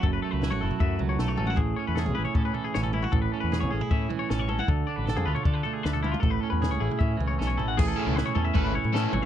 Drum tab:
CC |----------------|----------------|----------------|----------------|
SD |----o-------o---|----o-------o---|----o-------o---|----o-------o---|
T2 |-----o----o---oo|-----o--------oo|-----o----o---oo|-----o--------oo|
FT |o---o--o--o--o--|o---o--o--o--o--|o---o--o--o--o--|o---o--o--o--o--|
BD |o-------o-------|o-------o-------|o-------o-------|o-------o-------|

CC |----------------|x---------------|
SD |----o-------o---|----o-------o---|
T2 |-----o----o-----|------o-o-----o-|
FT |o---o--o--o---o-|o--o-o--o-oo--o-|
BD |o-------o-------|o-------o-------|